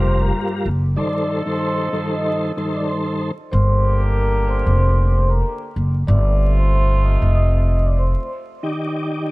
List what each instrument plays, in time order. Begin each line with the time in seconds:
Already playing: upright bass F1, tonewheel organ G2 G3 F4 A#4, horn section D3 A#3 G4, vibraphone C5 C6
0.19 vibraphone A#4 A#5
0.66 upright bass F#1
0.96 tonewheel organ G2 D#3 A4 C5, horn section F3 D#4 A4, vibraphone D5 D6
1.46 tonewheel organ G2 D#3 A4 C5, vibraphone C5 C6
1.92 tonewheel organ G2 D#3 A4 C5, vibraphone D#5 D#6
2.25 vibraphone D#5 D#6
2.57 tonewheel organ G2 D#3 A4 C5
2.75 vibraphone D5 D6
2.88 vibraphone C5 C6
3.52 upright bass G1, horn section D3 A#3 G4, vibraphone C5 C6
4.01 vibraphone A#4 A#5
4.48 vibraphone C5 C6
4.67 upright bass F1
4.79 vibraphone C5 C6
5.29 vibraphone A#4 A#5
5.76 upright bass F#1
6.07 upright bass G1, horn section C3 A3 F4, vibraphone D5 D6
6.58 vibraphone C5 C6
7.04 vibraphone D#5 D#6
7.22 upright bass F1
7.34 vibraphone D#5 D#6
7.85 vibraphone D5 D6
7.98 vibraphone C5 C6
8.63 tonewheel organ D#3 D#4 G4 D5